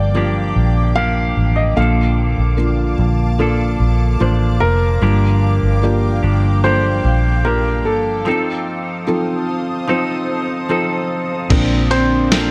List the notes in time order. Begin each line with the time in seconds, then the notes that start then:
Already playing: G1 G2 D3 F3 A#3 D4 G4 D5 F5 G5 D6
0.14 F3 A#3 D4 G4
0.56 A#1
0.95 F3 A#3 D4 G4 A#4 F5
1.37 A1
1.56 D#5
1.76 A#1 A#2 D3 F3 A#3 D4 A4 F5 A5 D6
1.80 D4 A4
2.38 A#1
2.57 F3 A#3 D4 F4
2.99 A#1
3.38 F3 A#3 D4 A4
3.80 A#1
4.20 A1 F3 A#3 D4 C5
4.60 F1 A#4
5.02 G1 G2 D3 F3 A#3 D4 G4 G5
5.63 G1
5.82 F3 A#3 D4 G4
6.23 G1 F3 A#3 D4 G4
6.63 F3 A#3 D4 G4 A4 C5
7.05 A#1
7.45 F3 A#3 D4 G4 A#4
7.85 G1 A4
8.25 F3 C4 D#4 A4 C5 A5 D#6
9.07 F3 C4 D#4 A4
9.88 F3 C4 D#4 A4 C5
10.69 F3 C4 D#4 A4
11.50 A#1 A#2 D3 F3 A#3 C4 D4 A#4 C5 F5 D6, kick, crash, ride
11.91 C4 C5, ride
12.31 F3 A#3 C4 D4 A4 A#4, snare, ride